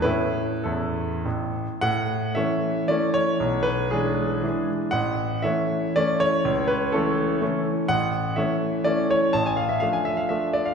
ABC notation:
X:1
M:3/4
L:1/16
Q:1/4=120
K:A
V:1 name="Grand piano"
[EB]4 [EA]6 z2 | f4 e4 d2 c2- | c2 B2 G6 z2 | f4 e4 d2 c2- |
c2 B2 A6 z2 | f4 e4 d2 c2 | a g =f e f g e f e2 d f |]
V:2 name="Grand piano"
[A,,A,C]4 E,,4 A,,,4 | A,,4 [E,A,C]4 [E,A,C]4 | B,,,4 [E,G,D]4 [E,G,D]4 | A,,,4 [E,A,C]4 [E,A,C]4 |
C,,4 [E,A,C]4 [E,A,C]4 | A,,,4 [E,A,C]4 [E,A,C]4 | A,,,4 [=F,A,D]4 [F,A,D]4 |]